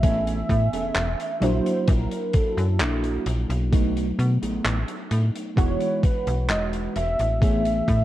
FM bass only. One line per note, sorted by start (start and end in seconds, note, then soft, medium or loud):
0.00 0.44 A1 medium
0.50 0.69 A2 medium
0.73 0.91 E1 soft
0.96 1.15 E1 medium
1.42 1.61 A#1 medium
1.88 2.08 A#1 medium
2.57 2.81 F#2 medium
2.80 3.19 A#1 medium
3.26 3.46 A#1 medium
3.49 4.12 B1 medium
4.19 4.38 B2 medium
4.42 4.60 A1 soft
4.65 4.84 A1 medium
5.11 5.31 A2 medium
5.57 5.77 E1 loud
6.27 6.51 B1 medium
6.50 6.88 E1 medium
6.96 7.16 E1 medium
7.20 7.82 A1 medium
7.88 8.04 A2 medium